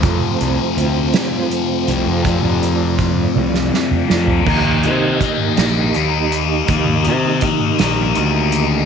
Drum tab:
CC |------------|------------|x-----------|------------|
HH |x-x-x-x-x-x-|x-x-x-------|--x-x-x-x-x-|x-x-x-x-x-x-|
SD |------o-----|-------oo-o-|------o-----|------o-----|
T1 |------------|------o-----|------------|------------|
T2 |------------|---------o--|------------|------------|
FT |------------|-----------o|------------|------------|
BD |o-----------|o---o-------|o---o-------|o---o-------|